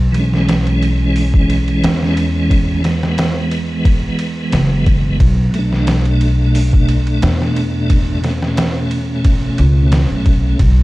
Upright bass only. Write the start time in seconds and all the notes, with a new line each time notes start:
Already playing: B1
1.83 E2
4.53 F#1
5.20 B1
7.23 E2
9.59 C#2
10.10 B1
10.60 B1